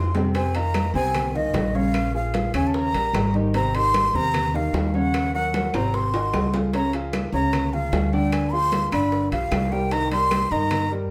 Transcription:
Already playing: upright bass F2, flute C6
0.15 grand piano C3 C4 C5, low bongo, high conga, low timbale
0.35 grand piano C3 C4 C5, flute G#5, high bongo, high timbale
0.55 grand piano D#3 D#4 F4, flute A#5, high conga, high timbale
0.74 high bongo, high conga, high timbale, low timbale, claves
0.94 upright bass C2, grand piano C3 C4 C5, flute G#5, high conga
1.14 high bongo, high conga, low conga, high timbale, claves
1.34 grand piano D#3 D#4 F4, flute D#5, high conga, low conga
1.53 upright bass A#1, high bongo, low bongo, high conga, high timbale, low timbale
1.74 grand piano C#3 C#4 C#5, flute F5, high conga
1.94 high bongo, high conga, high timbale, claves
2.14 grand piano F3 F4 G#4, flute F5, high bongo, high conga
2.34 grand piano F3 F4 G#4, high bongo, high conga, high timbale, low timbale
2.54 upright bass D#2, grand piano C#3 C#4 C#5, flute G#5, high timbale, claves
2.67 flute A5
2.74 flute A#5, high bongo, high conga
2.93 upright bass A#1, grand piano G3 G4 A#4, high bongo, high conga, high timbale
3.13 upright bass G#1, high bongo, low bongo, high conga, high timbale, low timbale, claves
3.34 grand piano D#3 D#4 G4, high bongo, high conga
3.54 grand piano C3 C4 C5, flute A#5, high bongo, high timbale
3.74 grand piano D#3 D#4 G4, flute C6, high conga, high timbale
3.94 high bongo, high conga, high timbale, low timbale, claves
4.14 upright bass D#2, grand piano C3 C4 C5, flute A#5, high conga
4.34 high bongo, high conga, low conga, high timbale, claves
4.54 grand piano D#3 D#4 G4, flute F5, high conga, low conga
4.73 upright bass D#2, high bongo, low bongo, high conga, high timbale, low timbale
4.87 flute F5
4.94 grand piano C#3 C#4 C#5, flute F#5, high conga
5.14 high bongo, high timbale, claves
5.34 grand piano F#3 F#4 A#4, flute F#5, high bongo, high conga
5.54 grand piano F#3 F#4 A#4, high bongo, high conga, high timbale, low timbale
5.74 upright bass G#1, grand piano C3 C4 C5, flute A#5, high conga, high timbale, claves
5.94 flute C6, high bongo, high conga
6.14 grand piano D#3 D#4 F#4, high bongo, high conga, high timbale
6.33 upright bass C#2, high bongo, low bongo, high conga, low timbale, claves
6.54 grand piano F3 F4 G#4, high bongo, high conga, low timbale
6.73 grand piano C#3 C#4 C#5, flute A#5, high bongo, high conga, high timbale
6.93 grand piano F3 F4 G#4, high timbale
7.13 high bongo, high conga, high timbale, low timbale, claves
7.32 upright bass C#2, grand piano C#3 C#4 C#5, flute A#5, high conga
7.53 high bongo, high conga, low conga, high timbale, claves
7.73 grand piano F3 F4 G#4, flute F5, high conga, low conga
7.92 upright bass D2, high bongo, low bongo, high conga, high timbale, low timbale
8.13 grand piano D3 D4 D5, flute G5, high conga
8.32 flute G#5, high bongo, high conga, high timbale, claves
8.52 grand piano F3 F4 G#4, flute C6, high bongo, high conga
8.72 grand piano F3 F4 G#4, high bongo, high conga, high timbale, low timbale
8.92 upright bass G1, grand piano D3 D4 D5, flute B5, high timbale, claves
9.12 high bongo, high conga
9.31 upright bass B1, grand piano F3 F4 G4, flute F5, high bongo, high conga, high timbale
9.51 upright bass C2, high bongo, low bongo, high conga, high timbale, low timbale, claves
9.72 grand piano G3 G4 A#4, flute G5, high bongo
9.91 grand piano D#3 D#4 D#5, flute A#5, high bongo, high timbale
10.11 grand piano G3 G4 A#4, flute C6, high conga, high timbale
10.31 high bongo, high conga, high timbale, low timbale, claves
10.51 upright bass G2, grand piano D#3 D#4 D#5, flute A#5, high conga
10.71 high bongo, high conga, low conga, high timbale, claves
10.91 grand piano G3 G4 A#4, high conga

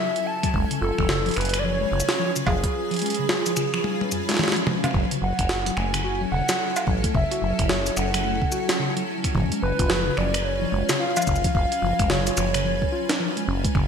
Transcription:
Already playing: ambient pad F#3 C#4 E4 A4 G#5, soft synth lead E5
0.16 closed hi-hat
0.26 soft synth lead A5
0.43 tine electric piano F#3, finger snap, kick, closed hi-hat
0.54 acid bass F#1, ambient pad F#3 C#4 F4 B4, tine electric piano G#3, kick
0.71 tine electric piano C#3, closed hi-hat
0.81 acid bass F#1, tine electric piano F4, soft synth lead A4
0.98 acid bass F#1, tine electric piano F3, finger snap, kick
1.09 tine electric piano C#3, snare
1.26 tine electric piano F3, closed hi-hat
1.29 closed hi-hat
1.31 closed hi-hat
1.34 finger snap, closed hi-hat
1.36 acid bass F#1, soft synth lead B4, closed hi-hat
1.41 closed hi-hat
1.45 closed hi-hat
1.49 closed hi-hat
1.54 finger snap, closed hi-hat
1.59 soft synth lead D5
1.64 tine electric piano F3, soft synth lead C#5
1.92 acid bass F#1, tine electric piano C#3
2.00 shaker
2.09 tine electric piano F4, finger snap, snare
2.19 tine electric piano F3, soft synth lead C#5
2.36 tine electric piano C#3, closed hi-hat, shaker
2.47 acid bass F#1, tine electric piano F3, soft synth lead G#4, kick, cowbell
2.64 kick, closed hi-hat
2.91 tine electric piano F3, closed hi-hat
2.94 closed hi-hat
2.96 closed hi-hat
2.99 closed hi-hat
3.02 tine electric piano G#3, closed hi-hat
3.06 closed hi-hat
3.10 closed hi-hat
3.14 closed hi-hat
3.19 tine electric piano C#3
3.29 tine electric piano F4, snare
3.46 tine electric piano F3, closed hi-hat, shaker
3.57 tine electric piano C#3, finger snap, shaker
3.74 tine electric piano F3, finger snap
3.84 high tom
4.01 high tom
4.12 tine electric piano F2, closed hi-hat, shaker
4.29 tine electric piano G#3, snare, closed hi-hat
4.31 snare
4.34 snare
4.37 snare
4.39 tine electric piano G#3, snare, mid tom
4.44 snare
4.48 snare
4.52 snare
4.56 tine electric piano F3, closed hi-hat
4.67 tine electric piano F3, mid tom
4.84 tine electric piano C#4, finger snap, closed hi-hat, mid tom, cowbell
4.91 finger snap
4.94 acid bass F#1, tine electric piano F#3, ambient pad E4 A4 G#5, finger snap, kick
5.00 finger snap
5.03 finger snap
5.11 tine electric piano C#3, closed hi-hat
5.22 acid bass F#1, tine electric piano F#3, soft synth lead F#5
5.39 acid bass F#1, finger snap, kick, closed hi-hat
5.49 snare
5.66 tine electric piano F#3, closed hi-hat
5.77 acid bass F#1, tine electric piano A3, soft synth lead G#5, finger snap
5.94 tine electric piano C#3, finger snap, closed hi-hat
6.04 tine electric piano F#4, soft synth lead G#5
6.22 tine electric piano F#3
6.32 acid bass E1, tine electric piano C#3, soft synth lead F#5
6.49 tine electric piano F#3, finger snap, snare, closed hi-hat, shaker
6.76 closed hi-hat, cowbell, shaker
6.87 acid bass A1, tine electric piano F#3, kick
7.04 tine electric piano A3, kick, closed hi-hat
7.14 acid bass F#1, tine electric piano C#3, soft synth lead E5, kick
7.31 tine electric piano F#4, closed hi-hat
7.42 acid bass F#1, tine electric piano F#3
7.59 acid bass F#1, tine electric piano C#3, finger snap, kick, closed hi-hat
7.69 tine electric piano F#3, soft synth lead C#5, snare
7.87 closed hi-hat, shaker
7.97 acid bass F#1, soft synth lead F#5, finger snap, shaker
8.14 tine electric piano F#3, finger snap, closed hi-hat
8.25 tine electric piano A3
8.42 tine electric piano C#3, kick
8.52 tine electric piano F#4, shaker
8.69 tine electric piano F#3, snare, closed hi-hat
8.80 tine electric piano C#3
8.97 tine electric piano F#3, closed hi-hat
9.24 finger snap, kick, closed hi-hat
9.35 acid bass F#1, tine electric piano F3, ambient pad F4 B4, kick
9.38 kick
9.40 kick
9.43 kick
9.49 tine electric piano G#3, kick, closed hi-hat
9.62 acid bass F#1, tine electric piano C#3, soft synth lead B4
9.79 acid bass F#1, tine electric piano F4, kick, closed hi-hat
9.90 tine electric piano F3, finger snap, snare
10.07 tine electric piano C#3
10.17 acid bass F#1, tine electric piano F3, soft synth lead D5, finger snap
10.34 finger snap, closed hi-hat
10.45 soft synth lead C#5
10.62 tine electric piano F3
10.72 acid bass F#1, tine electric piano G#3
10.89 tine electric piano C#3, finger snap, snare, closed hi-hat, shaker
11.00 tine electric piano F4, soft synth lead F5
11.17 tine electric piano F3, closed hi-hat, cowbell, shaker
11.22 shaker
11.27 acid bass F#1, tine electric piano C#3, kick, shaker
11.36 shaker
11.44 tine electric piano F3, kick, closed hi-hat
11.55 acid bass F#1, soft synth lead F5, kick
11.72 closed hi-hat
11.82 acid bass F#1, tine electric piano F3
11.99 acid bass F#1, tine electric piano G#3, finger snap, kick, closed hi-hat
12.10 tine electric piano C#3, soft synth lead C#5, snare
12.27 tine electric piano F4, closed hi-hat, shaker
12.37 acid bass F#1, tine electric piano F3, finger snap, shaker
12.54 tine electric piano C#3, finger snap, closed hi-hat
12.65 tine electric piano F3
12.82 kick
12.92 tine electric piano F4
13.09 tine electric piano C#4, snare, closed hi-hat
13.20 tine electric piano F3
13.37 tine electric piano G#3, closed hi-hat
13.47 acid bass F#1, tine electric piano C#4
13.65 tine electric piano G#3, kick, closed hi-hat
13.75 acid bass F#1, tine electric piano C#3, ambient pad F#3 C#4 E4 A4, finger snap, kick

